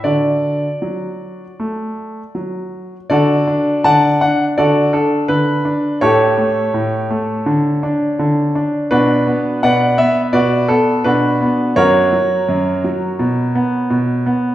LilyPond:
<<
  \new Staff \with { instrumentName = "Grand piano" } { \time 4/4 \key d \major \tempo 4 = 83 << { d''2. r4 | <fis' a' d''>4 <d'' fis'' a''>8 fis''8 <fis' a' d''>8 a'8 b'4 | <g' a' cis''>1 | <d' fis' b'>4 <b' d'' fis''>8 e''8 <fis' b' d''>8 a'8 <d' fis' b'>4 |
<fis' ais' cis''>1 | } \\ { fis'1 | r1 | r1 | r1 |
r1 | } >> }
  \new Staff \with { instrumentName = "Grand piano" } { \clef bass \time 4/4 \key d \major d4 fis4 a4 fis4 | d8 d'8 d8 d'8 d8 d'8 d8 d'8 | a,8 a8 a,8 a8 d8 d'8 d8 d'8 | b,8 b8 b,8 b8 b,8 b8 b,8 b8 |
fis,8 fis8 fis,8 fis8 b,8 b8 b,8 b8 | }
>>